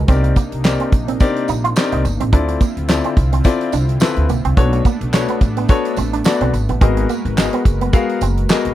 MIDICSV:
0, 0, Header, 1, 7, 480
1, 0, Start_track
1, 0, Tempo, 560748
1, 73, Time_signature, 4, 2, 24, 8
1, 7481, End_track
2, 0, Start_track
2, 0, Title_t, "Grand piano"
2, 0, Program_c, 0, 0
2, 69, Note_on_c, 0, 60, 85
2, 71, Note_on_c, 0, 63, 76
2, 72, Note_on_c, 0, 67, 83
2, 75, Note_on_c, 0, 70, 81
2, 76, Note_on_c, 0, 74, 93
2, 284, Note_off_c, 0, 60, 0
2, 285, Note_off_c, 0, 63, 0
2, 285, Note_off_c, 0, 67, 0
2, 287, Note_off_c, 0, 70, 0
2, 287, Note_off_c, 0, 74, 0
2, 549, Note_on_c, 0, 60, 78
2, 552, Note_on_c, 0, 63, 72
2, 554, Note_on_c, 0, 67, 69
2, 555, Note_on_c, 0, 70, 75
2, 557, Note_on_c, 0, 74, 85
2, 764, Note_off_c, 0, 60, 0
2, 765, Note_off_c, 0, 63, 0
2, 766, Note_off_c, 0, 67, 0
2, 767, Note_off_c, 0, 70, 0
2, 768, Note_off_c, 0, 74, 0
2, 1031, Note_on_c, 0, 60, 104
2, 1032, Note_on_c, 0, 63, 93
2, 1033, Note_on_c, 0, 67, 91
2, 1035, Note_on_c, 0, 70, 85
2, 1036, Note_on_c, 0, 74, 115
2, 1245, Note_off_c, 0, 60, 0
2, 1245, Note_off_c, 0, 63, 0
2, 1246, Note_off_c, 0, 67, 0
2, 1247, Note_off_c, 0, 70, 0
2, 1247, Note_off_c, 0, 74, 0
2, 1511, Note_on_c, 0, 60, 92
2, 1513, Note_on_c, 0, 63, 78
2, 1514, Note_on_c, 0, 67, 77
2, 1516, Note_on_c, 0, 70, 80
2, 1517, Note_on_c, 0, 74, 93
2, 1725, Note_off_c, 0, 60, 0
2, 1726, Note_off_c, 0, 63, 0
2, 1726, Note_off_c, 0, 67, 0
2, 1727, Note_off_c, 0, 70, 0
2, 1728, Note_off_c, 0, 74, 0
2, 1990, Note_on_c, 0, 60, 82
2, 1991, Note_on_c, 0, 64, 81
2, 1994, Note_on_c, 0, 65, 76
2, 1995, Note_on_c, 0, 69, 80
2, 1997, Note_on_c, 0, 74, 97
2, 2204, Note_off_c, 0, 60, 0
2, 2205, Note_off_c, 0, 64, 0
2, 2206, Note_off_c, 0, 65, 0
2, 2207, Note_off_c, 0, 69, 0
2, 2208, Note_off_c, 0, 74, 0
2, 2469, Note_on_c, 0, 60, 76
2, 2471, Note_on_c, 0, 64, 76
2, 2472, Note_on_c, 0, 65, 72
2, 2473, Note_on_c, 0, 69, 69
2, 2475, Note_on_c, 0, 74, 83
2, 2684, Note_off_c, 0, 60, 0
2, 2685, Note_off_c, 0, 64, 0
2, 2685, Note_off_c, 0, 65, 0
2, 2686, Note_off_c, 0, 69, 0
2, 2687, Note_off_c, 0, 74, 0
2, 2949, Note_on_c, 0, 60, 101
2, 2951, Note_on_c, 0, 64, 84
2, 2952, Note_on_c, 0, 65, 99
2, 2954, Note_on_c, 0, 69, 92
2, 2956, Note_on_c, 0, 74, 108
2, 3164, Note_off_c, 0, 60, 0
2, 3165, Note_off_c, 0, 64, 0
2, 3165, Note_off_c, 0, 65, 0
2, 3166, Note_off_c, 0, 69, 0
2, 3167, Note_off_c, 0, 74, 0
2, 3431, Note_on_c, 0, 60, 85
2, 3432, Note_on_c, 0, 64, 83
2, 3435, Note_on_c, 0, 65, 83
2, 3436, Note_on_c, 0, 69, 79
2, 3437, Note_on_c, 0, 71, 94
2, 3645, Note_off_c, 0, 60, 0
2, 3645, Note_off_c, 0, 64, 0
2, 3647, Note_off_c, 0, 65, 0
2, 3647, Note_off_c, 0, 69, 0
2, 3648, Note_off_c, 0, 71, 0
2, 3909, Note_on_c, 0, 59, 85
2, 3912, Note_on_c, 0, 62, 77
2, 3913, Note_on_c, 0, 66, 81
2, 3915, Note_on_c, 0, 69, 78
2, 3917, Note_on_c, 0, 73, 99
2, 4124, Note_off_c, 0, 59, 0
2, 4125, Note_off_c, 0, 62, 0
2, 4126, Note_off_c, 0, 66, 0
2, 4127, Note_off_c, 0, 69, 0
2, 4128, Note_off_c, 0, 73, 0
2, 4392, Note_on_c, 0, 59, 79
2, 4394, Note_on_c, 0, 62, 76
2, 4396, Note_on_c, 0, 66, 67
2, 4397, Note_on_c, 0, 69, 75
2, 4399, Note_on_c, 0, 73, 85
2, 4605, Note_off_c, 0, 59, 0
2, 4606, Note_off_c, 0, 62, 0
2, 4607, Note_off_c, 0, 66, 0
2, 4608, Note_off_c, 0, 69, 0
2, 4609, Note_off_c, 0, 73, 0
2, 4871, Note_on_c, 0, 59, 99
2, 4872, Note_on_c, 0, 62, 91
2, 4874, Note_on_c, 0, 66, 88
2, 4877, Note_on_c, 0, 69, 92
2, 4878, Note_on_c, 0, 73, 112
2, 5085, Note_off_c, 0, 59, 0
2, 5085, Note_off_c, 0, 62, 0
2, 5086, Note_off_c, 0, 66, 0
2, 5088, Note_off_c, 0, 69, 0
2, 5088, Note_off_c, 0, 73, 0
2, 5351, Note_on_c, 0, 59, 87
2, 5352, Note_on_c, 0, 62, 78
2, 5353, Note_on_c, 0, 66, 87
2, 5355, Note_on_c, 0, 69, 78
2, 5357, Note_on_c, 0, 74, 97
2, 5565, Note_off_c, 0, 59, 0
2, 5565, Note_off_c, 0, 62, 0
2, 5566, Note_off_c, 0, 66, 0
2, 5567, Note_off_c, 0, 69, 0
2, 5568, Note_off_c, 0, 74, 0
2, 5828, Note_on_c, 0, 59, 88
2, 5830, Note_on_c, 0, 66, 83
2, 5832, Note_on_c, 0, 68, 78
2, 5833, Note_on_c, 0, 70, 81
2, 5834, Note_on_c, 0, 75, 93
2, 6044, Note_off_c, 0, 59, 0
2, 6044, Note_off_c, 0, 66, 0
2, 6045, Note_off_c, 0, 68, 0
2, 6046, Note_off_c, 0, 70, 0
2, 6046, Note_off_c, 0, 75, 0
2, 6310, Note_on_c, 0, 59, 74
2, 6312, Note_on_c, 0, 66, 73
2, 6314, Note_on_c, 0, 68, 68
2, 6316, Note_on_c, 0, 70, 66
2, 6317, Note_on_c, 0, 75, 85
2, 6524, Note_off_c, 0, 59, 0
2, 6525, Note_off_c, 0, 66, 0
2, 6526, Note_off_c, 0, 68, 0
2, 6527, Note_off_c, 0, 70, 0
2, 6528, Note_off_c, 0, 75, 0
2, 6788, Note_on_c, 0, 59, 94
2, 6789, Note_on_c, 0, 66, 97
2, 6792, Note_on_c, 0, 68, 88
2, 6793, Note_on_c, 0, 70, 89
2, 6795, Note_on_c, 0, 77, 109
2, 7003, Note_off_c, 0, 59, 0
2, 7004, Note_off_c, 0, 66, 0
2, 7005, Note_off_c, 0, 68, 0
2, 7006, Note_off_c, 0, 70, 0
2, 7007, Note_off_c, 0, 77, 0
2, 7270, Note_on_c, 0, 59, 85
2, 7271, Note_on_c, 0, 66, 82
2, 7274, Note_on_c, 0, 68, 80
2, 7275, Note_on_c, 0, 70, 81
2, 7277, Note_on_c, 0, 75, 95
2, 7481, Note_off_c, 0, 59, 0
2, 7481, Note_off_c, 0, 66, 0
2, 7481, Note_off_c, 0, 68, 0
2, 7481, Note_off_c, 0, 70, 0
2, 7481, Note_off_c, 0, 75, 0
2, 7481, End_track
3, 0, Start_track
3, 0, Title_t, "Analog synth pad"
3, 0, Program_c, 1, 89
3, 73, Note_on_c, 1, 58, 62
3, 73, Note_on_c, 1, 62, 70
3, 75, Note_on_c, 1, 48, 74
3, 75, Note_on_c, 1, 63, 75
3, 1974, Note_off_c, 1, 48, 0
3, 1974, Note_off_c, 1, 58, 0
3, 1974, Note_off_c, 1, 62, 0
3, 1974, Note_off_c, 1, 63, 0
3, 1996, Note_on_c, 1, 50, 76
3, 1996, Note_on_c, 1, 65, 79
3, 1997, Note_on_c, 1, 64, 64
3, 1998, Note_on_c, 1, 60, 67
3, 3895, Note_off_c, 1, 50, 0
3, 3895, Note_off_c, 1, 64, 0
3, 3895, Note_off_c, 1, 65, 0
3, 3896, Note_off_c, 1, 60, 0
3, 3918, Note_on_c, 1, 62, 84
3, 3919, Note_on_c, 1, 57, 80
3, 3919, Note_on_c, 1, 59, 67
3, 5816, Note_off_c, 1, 62, 0
3, 5817, Note_off_c, 1, 57, 0
3, 5817, Note_off_c, 1, 59, 0
3, 5830, Note_on_c, 1, 56, 68
3, 5831, Note_on_c, 1, 66, 64
3, 5831, Note_on_c, 1, 71, 78
3, 5832, Note_on_c, 1, 70, 65
3, 7481, Note_off_c, 1, 56, 0
3, 7481, Note_off_c, 1, 66, 0
3, 7481, Note_off_c, 1, 70, 0
3, 7481, Note_off_c, 1, 71, 0
3, 7481, End_track
4, 0, Start_track
4, 0, Title_t, "Clean electric guitar"
4, 0, Program_c, 2, 27
4, 72, Note_on_c, 2, 60, 89
4, 171, Note_off_c, 2, 60, 0
4, 311, Note_on_c, 2, 58, 79
4, 410, Note_off_c, 2, 58, 0
4, 686, Note_on_c, 2, 60, 72
4, 764, Note_off_c, 2, 60, 0
4, 926, Note_on_c, 2, 60, 85
4, 1004, Note_off_c, 2, 60, 0
4, 1272, Note_on_c, 2, 63, 84
4, 1371, Note_off_c, 2, 63, 0
4, 1406, Note_on_c, 2, 65, 69
4, 1484, Note_off_c, 2, 65, 0
4, 1646, Note_on_c, 2, 63, 89
4, 1724, Note_off_c, 2, 63, 0
4, 1886, Note_on_c, 2, 60, 81
4, 1963, Note_off_c, 2, 60, 0
4, 1994, Note_on_c, 2, 62, 93
4, 2092, Note_off_c, 2, 62, 0
4, 2232, Note_on_c, 2, 58, 83
4, 2331, Note_off_c, 2, 58, 0
4, 2608, Note_on_c, 2, 60, 78
4, 2685, Note_off_c, 2, 60, 0
4, 2848, Note_on_c, 2, 60, 83
4, 2925, Note_off_c, 2, 60, 0
4, 3192, Note_on_c, 2, 62, 95
4, 3291, Note_off_c, 2, 62, 0
4, 3675, Note_on_c, 2, 58, 78
4, 3773, Note_off_c, 2, 58, 0
4, 3809, Note_on_c, 2, 60, 78
4, 3886, Note_off_c, 2, 60, 0
4, 3915, Note_on_c, 2, 59, 84
4, 4012, Note_off_c, 2, 59, 0
4, 4156, Note_on_c, 2, 58, 81
4, 4253, Note_off_c, 2, 58, 0
4, 4529, Note_on_c, 2, 59, 75
4, 4606, Note_off_c, 2, 59, 0
4, 4770, Note_on_c, 2, 59, 84
4, 4846, Note_off_c, 2, 59, 0
4, 5114, Note_on_c, 2, 60, 79
4, 5212, Note_off_c, 2, 60, 0
4, 5250, Note_on_c, 2, 62, 75
4, 5326, Note_off_c, 2, 62, 0
4, 5490, Note_on_c, 2, 60, 84
4, 5566, Note_off_c, 2, 60, 0
4, 5730, Note_on_c, 2, 59, 83
4, 5806, Note_off_c, 2, 59, 0
4, 5834, Note_on_c, 2, 60, 93
4, 5932, Note_off_c, 2, 60, 0
4, 6074, Note_on_c, 2, 58, 76
4, 6172, Note_off_c, 2, 58, 0
4, 6449, Note_on_c, 2, 59, 72
4, 6526, Note_off_c, 2, 59, 0
4, 6688, Note_on_c, 2, 59, 88
4, 6765, Note_off_c, 2, 59, 0
4, 7034, Note_on_c, 2, 60, 86
4, 7132, Note_off_c, 2, 60, 0
4, 7481, End_track
5, 0, Start_track
5, 0, Title_t, "Upright bass"
5, 0, Program_c, 3, 32
5, 72, Note_on_c, 3, 36, 127
5, 260, Note_off_c, 3, 36, 0
5, 448, Note_on_c, 3, 36, 91
5, 635, Note_off_c, 3, 36, 0
5, 790, Note_on_c, 3, 34, 100
5, 979, Note_off_c, 3, 34, 0
5, 1274, Note_on_c, 3, 34, 97
5, 1461, Note_off_c, 3, 34, 0
5, 1648, Note_on_c, 3, 36, 99
5, 1730, Note_off_c, 3, 36, 0
5, 1753, Note_on_c, 3, 31, 103
5, 1858, Note_off_c, 3, 31, 0
5, 1889, Note_on_c, 3, 33, 103
5, 1971, Note_off_c, 3, 33, 0
5, 1992, Note_on_c, 3, 38, 123
5, 2180, Note_off_c, 3, 38, 0
5, 2369, Note_on_c, 3, 38, 98
5, 2556, Note_off_c, 3, 38, 0
5, 2712, Note_on_c, 3, 36, 98
5, 2900, Note_off_c, 3, 36, 0
5, 3194, Note_on_c, 3, 36, 98
5, 3381, Note_off_c, 3, 36, 0
5, 3568, Note_on_c, 3, 38, 95
5, 3650, Note_off_c, 3, 38, 0
5, 3675, Note_on_c, 3, 35, 100
5, 3779, Note_off_c, 3, 35, 0
5, 3809, Note_on_c, 3, 36, 94
5, 3890, Note_off_c, 3, 36, 0
5, 3914, Note_on_c, 3, 35, 106
5, 4101, Note_off_c, 3, 35, 0
5, 4288, Note_on_c, 3, 35, 98
5, 4475, Note_off_c, 3, 35, 0
5, 4632, Note_on_c, 3, 33, 99
5, 4819, Note_off_c, 3, 33, 0
5, 5113, Note_on_c, 3, 33, 98
5, 5300, Note_off_c, 3, 33, 0
5, 5487, Note_on_c, 3, 35, 99
5, 5569, Note_off_c, 3, 35, 0
5, 5594, Note_on_c, 3, 32, 105
5, 5698, Note_off_c, 3, 32, 0
5, 5728, Note_on_c, 3, 33, 96
5, 5810, Note_off_c, 3, 33, 0
5, 5832, Note_on_c, 3, 32, 118
5, 6020, Note_off_c, 3, 32, 0
5, 6207, Note_on_c, 3, 32, 100
5, 6394, Note_off_c, 3, 32, 0
5, 6551, Note_on_c, 3, 30, 93
5, 6739, Note_off_c, 3, 30, 0
5, 7032, Note_on_c, 3, 30, 96
5, 7220, Note_off_c, 3, 30, 0
5, 7406, Note_on_c, 3, 32, 89
5, 7481, Note_off_c, 3, 32, 0
5, 7481, End_track
6, 0, Start_track
6, 0, Title_t, "Muted clean electric guitar strokes"
6, 205, Note_on_c, 9, 29, 48
6, 291, Note_off_c, 9, 29, 0
6, 793, Note_on_c, 9, 29, 45
6, 879, Note_off_c, 9, 29, 0
6, 1032, Note_on_c, 9, 29, 47
6, 1118, Note_off_c, 9, 29, 0
6, 1753, Note_on_c, 9, 29, 41
6, 1838, Note_off_c, 9, 29, 0
6, 2128, Note_on_c, 9, 29, 49
6, 2214, Note_off_c, 9, 29, 0
6, 2713, Note_on_c, 9, 29, 47
6, 2798, Note_off_c, 9, 29, 0
6, 3434, Note_on_c, 9, 29, 46
6, 3520, Note_off_c, 9, 29, 0
6, 4049, Note_on_c, 9, 29, 49
6, 4134, Note_off_c, 9, 29, 0
6, 4635, Note_on_c, 9, 29, 45
6, 4721, Note_off_c, 9, 29, 0
6, 4875, Note_on_c, 9, 29, 49
6, 4961, Note_off_c, 9, 29, 0
6, 5596, Note_on_c, 9, 29, 46
6, 5681, Note_off_c, 9, 29, 0
6, 5970, Note_on_c, 9, 29, 48
6, 6055, Note_off_c, 9, 29, 0
6, 6554, Note_on_c, 9, 29, 45
6, 6639, Note_off_c, 9, 29, 0
6, 7275, Note_on_c, 9, 29, 49
6, 7360, Note_off_c, 9, 29, 0
6, 7481, End_track
7, 0, Start_track
7, 0, Title_t, "Drums"
7, 69, Note_on_c, 9, 54, 37
7, 70, Note_on_c, 9, 42, 100
7, 72, Note_on_c, 9, 36, 118
7, 155, Note_off_c, 9, 42, 0
7, 155, Note_off_c, 9, 54, 0
7, 157, Note_off_c, 9, 36, 0
7, 206, Note_on_c, 9, 42, 55
7, 292, Note_off_c, 9, 42, 0
7, 309, Note_on_c, 9, 42, 76
7, 311, Note_on_c, 9, 36, 95
7, 315, Note_on_c, 9, 54, 55
7, 394, Note_off_c, 9, 42, 0
7, 397, Note_off_c, 9, 36, 0
7, 401, Note_off_c, 9, 54, 0
7, 447, Note_on_c, 9, 42, 52
7, 532, Note_off_c, 9, 42, 0
7, 549, Note_on_c, 9, 54, 86
7, 555, Note_on_c, 9, 39, 81
7, 557, Note_on_c, 9, 38, 110
7, 634, Note_off_c, 9, 54, 0
7, 641, Note_off_c, 9, 39, 0
7, 642, Note_off_c, 9, 38, 0
7, 684, Note_on_c, 9, 42, 55
7, 770, Note_off_c, 9, 42, 0
7, 790, Note_on_c, 9, 42, 69
7, 791, Note_on_c, 9, 36, 100
7, 801, Note_on_c, 9, 54, 31
7, 876, Note_off_c, 9, 42, 0
7, 877, Note_off_c, 9, 36, 0
7, 887, Note_off_c, 9, 54, 0
7, 927, Note_on_c, 9, 42, 63
7, 1013, Note_off_c, 9, 42, 0
7, 1027, Note_on_c, 9, 54, 53
7, 1031, Note_on_c, 9, 42, 94
7, 1032, Note_on_c, 9, 36, 121
7, 1113, Note_off_c, 9, 54, 0
7, 1116, Note_off_c, 9, 42, 0
7, 1117, Note_off_c, 9, 36, 0
7, 1169, Note_on_c, 9, 42, 53
7, 1255, Note_off_c, 9, 42, 0
7, 1267, Note_on_c, 9, 54, 60
7, 1273, Note_on_c, 9, 42, 90
7, 1353, Note_off_c, 9, 54, 0
7, 1359, Note_off_c, 9, 42, 0
7, 1410, Note_on_c, 9, 42, 54
7, 1496, Note_off_c, 9, 42, 0
7, 1505, Note_on_c, 9, 54, 99
7, 1518, Note_on_c, 9, 39, 105
7, 1519, Note_on_c, 9, 38, 122
7, 1591, Note_off_c, 9, 54, 0
7, 1603, Note_off_c, 9, 39, 0
7, 1605, Note_off_c, 9, 38, 0
7, 1645, Note_on_c, 9, 42, 56
7, 1731, Note_off_c, 9, 42, 0
7, 1754, Note_on_c, 9, 54, 54
7, 1757, Note_on_c, 9, 42, 67
7, 1840, Note_off_c, 9, 54, 0
7, 1843, Note_off_c, 9, 42, 0
7, 1887, Note_on_c, 9, 42, 60
7, 1973, Note_off_c, 9, 42, 0
7, 1992, Note_on_c, 9, 42, 104
7, 1993, Note_on_c, 9, 36, 116
7, 2077, Note_off_c, 9, 42, 0
7, 2078, Note_off_c, 9, 36, 0
7, 2128, Note_on_c, 9, 42, 59
7, 2214, Note_off_c, 9, 42, 0
7, 2231, Note_on_c, 9, 42, 70
7, 2232, Note_on_c, 9, 36, 100
7, 2236, Note_on_c, 9, 54, 54
7, 2317, Note_off_c, 9, 42, 0
7, 2318, Note_off_c, 9, 36, 0
7, 2321, Note_off_c, 9, 54, 0
7, 2370, Note_on_c, 9, 42, 52
7, 2456, Note_off_c, 9, 42, 0
7, 2469, Note_on_c, 9, 54, 94
7, 2477, Note_on_c, 9, 39, 82
7, 2478, Note_on_c, 9, 38, 103
7, 2555, Note_off_c, 9, 54, 0
7, 2562, Note_off_c, 9, 39, 0
7, 2564, Note_off_c, 9, 38, 0
7, 2604, Note_on_c, 9, 42, 53
7, 2690, Note_off_c, 9, 42, 0
7, 2712, Note_on_c, 9, 36, 98
7, 2712, Note_on_c, 9, 42, 74
7, 2720, Note_on_c, 9, 54, 35
7, 2797, Note_off_c, 9, 36, 0
7, 2798, Note_off_c, 9, 42, 0
7, 2806, Note_off_c, 9, 54, 0
7, 2848, Note_on_c, 9, 42, 66
7, 2934, Note_off_c, 9, 42, 0
7, 2945, Note_on_c, 9, 54, 53
7, 2951, Note_on_c, 9, 42, 105
7, 2952, Note_on_c, 9, 36, 109
7, 3031, Note_off_c, 9, 54, 0
7, 3037, Note_off_c, 9, 42, 0
7, 3038, Note_off_c, 9, 36, 0
7, 3090, Note_on_c, 9, 42, 48
7, 3175, Note_off_c, 9, 42, 0
7, 3187, Note_on_c, 9, 54, 55
7, 3193, Note_on_c, 9, 42, 104
7, 3273, Note_off_c, 9, 54, 0
7, 3278, Note_off_c, 9, 42, 0
7, 3330, Note_on_c, 9, 42, 53
7, 3416, Note_off_c, 9, 42, 0
7, 3424, Note_on_c, 9, 54, 105
7, 3438, Note_on_c, 9, 39, 103
7, 3440, Note_on_c, 9, 38, 127
7, 3510, Note_off_c, 9, 54, 0
7, 3524, Note_off_c, 9, 39, 0
7, 3526, Note_off_c, 9, 38, 0
7, 3565, Note_on_c, 9, 42, 53
7, 3651, Note_off_c, 9, 42, 0
7, 3674, Note_on_c, 9, 54, 54
7, 3678, Note_on_c, 9, 42, 64
7, 3760, Note_off_c, 9, 54, 0
7, 3763, Note_off_c, 9, 42, 0
7, 3809, Note_on_c, 9, 42, 63
7, 3894, Note_off_c, 9, 42, 0
7, 3912, Note_on_c, 9, 42, 109
7, 3914, Note_on_c, 9, 36, 124
7, 3998, Note_off_c, 9, 42, 0
7, 3999, Note_off_c, 9, 36, 0
7, 4048, Note_on_c, 9, 42, 60
7, 4133, Note_off_c, 9, 42, 0
7, 4151, Note_on_c, 9, 42, 70
7, 4152, Note_on_c, 9, 36, 105
7, 4158, Note_on_c, 9, 54, 57
7, 4237, Note_off_c, 9, 42, 0
7, 4238, Note_off_c, 9, 36, 0
7, 4244, Note_off_c, 9, 54, 0
7, 4291, Note_on_c, 9, 42, 53
7, 4376, Note_off_c, 9, 42, 0
7, 4390, Note_on_c, 9, 54, 90
7, 4396, Note_on_c, 9, 39, 86
7, 4398, Note_on_c, 9, 38, 105
7, 4476, Note_off_c, 9, 54, 0
7, 4482, Note_off_c, 9, 39, 0
7, 4484, Note_off_c, 9, 38, 0
7, 4524, Note_on_c, 9, 42, 54
7, 4610, Note_off_c, 9, 42, 0
7, 4632, Note_on_c, 9, 36, 91
7, 4632, Note_on_c, 9, 42, 71
7, 4640, Note_on_c, 9, 54, 31
7, 4717, Note_off_c, 9, 36, 0
7, 4717, Note_off_c, 9, 42, 0
7, 4726, Note_off_c, 9, 54, 0
7, 4767, Note_on_c, 9, 42, 67
7, 4852, Note_off_c, 9, 42, 0
7, 4867, Note_on_c, 9, 54, 54
7, 4871, Note_on_c, 9, 42, 95
7, 4872, Note_on_c, 9, 36, 122
7, 4953, Note_off_c, 9, 54, 0
7, 4957, Note_off_c, 9, 42, 0
7, 4958, Note_off_c, 9, 36, 0
7, 5010, Note_on_c, 9, 42, 52
7, 5095, Note_off_c, 9, 42, 0
7, 5106, Note_on_c, 9, 54, 55
7, 5113, Note_on_c, 9, 42, 98
7, 5191, Note_off_c, 9, 54, 0
7, 5198, Note_off_c, 9, 42, 0
7, 5251, Note_on_c, 9, 42, 56
7, 5337, Note_off_c, 9, 42, 0
7, 5344, Note_on_c, 9, 54, 96
7, 5359, Note_on_c, 9, 39, 103
7, 5360, Note_on_c, 9, 38, 127
7, 5430, Note_off_c, 9, 54, 0
7, 5444, Note_off_c, 9, 39, 0
7, 5446, Note_off_c, 9, 38, 0
7, 5486, Note_on_c, 9, 42, 59
7, 5572, Note_off_c, 9, 42, 0
7, 5595, Note_on_c, 9, 54, 49
7, 5597, Note_on_c, 9, 42, 65
7, 5681, Note_off_c, 9, 54, 0
7, 5683, Note_off_c, 9, 42, 0
7, 5727, Note_on_c, 9, 42, 61
7, 5813, Note_off_c, 9, 42, 0
7, 5832, Note_on_c, 9, 42, 96
7, 5833, Note_on_c, 9, 36, 125
7, 5917, Note_off_c, 9, 42, 0
7, 5918, Note_off_c, 9, 36, 0
7, 5967, Note_on_c, 9, 42, 62
7, 6053, Note_off_c, 9, 42, 0
7, 6072, Note_on_c, 9, 42, 72
7, 6078, Note_on_c, 9, 54, 56
7, 6157, Note_off_c, 9, 42, 0
7, 6164, Note_off_c, 9, 54, 0
7, 6210, Note_on_c, 9, 42, 52
7, 6296, Note_off_c, 9, 42, 0
7, 6311, Note_on_c, 9, 54, 95
7, 6317, Note_on_c, 9, 39, 88
7, 6318, Note_on_c, 9, 38, 102
7, 6396, Note_off_c, 9, 54, 0
7, 6402, Note_off_c, 9, 39, 0
7, 6404, Note_off_c, 9, 38, 0
7, 6445, Note_on_c, 9, 42, 57
7, 6530, Note_off_c, 9, 42, 0
7, 6552, Note_on_c, 9, 36, 96
7, 6553, Note_on_c, 9, 42, 68
7, 6560, Note_on_c, 9, 54, 34
7, 6637, Note_off_c, 9, 36, 0
7, 6639, Note_off_c, 9, 42, 0
7, 6646, Note_off_c, 9, 54, 0
7, 6688, Note_on_c, 9, 42, 60
7, 6774, Note_off_c, 9, 42, 0
7, 6787, Note_on_c, 9, 54, 55
7, 6790, Note_on_c, 9, 42, 100
7, 6791, Note_on_c, 9, 36, 122
7, 6873, Note_off_c, 9, 54, 0
7, 6876, Note_off_c, 9, 42, 0
7, 6877, Note_off_c, 9, 36, 0
7, 6930, Note_on_c, 9, 42, 55
7, 7015, Note_off_c, 9, 42, 0
7, 7028, Note_on_c, 9, 54, 60
7, 7032, Note_on_c, 9, 42, 104
7, 7114, Note_off_c, 9, 54, 0
7, 7117, Note_off_c, 9, 42, 0
7, 7169, Note_on_c, 9, 42, 53
7, 7255, Note_off_c, 9, 42, 0
7, 7268, Note_on_c, 9, 54, 102
7, 7278, Note_on_c, 9, 39, 102
7, 7279, Note_on_c, 9, 38, 127
7, 7353, Note_off_c, 9, 54, 0
7, 7363, Note_off_c, 9, 39, 0
7, 7365, Note_off_c, 9, 38, 0
7, 7404, Note_on_c, 9, 42, 58
7, 7481, Note_off_c, 9, 42, 0
7, 7481, End_track
0, 0, End_of_file